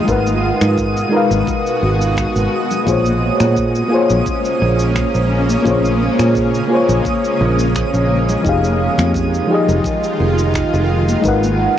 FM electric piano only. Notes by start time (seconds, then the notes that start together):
Already playing: F3 D#4 G4 G#4 D#5
0.04 G#3 D#4 A#4
0.10 B4 F#5
1.09 G#3 D#4 A#4
1.15 B4 F5
2.84 A#3 F4 G#4
2.89 C5 C#5
3.88 A#3 F4 G#4
3.94 C5 C#5
5.62 A#3 F4
5.66 G#4 C5 C#5
6.68 A#3 F4 G#4
6.73 C5 C#5
8.42 F3 D#4 G4
8.47 G#4 F5
9.47 F3 D#4 G4
9.52 G#4 D#5
11.21 G#3 D#4
11.25 A#4 B4 F#5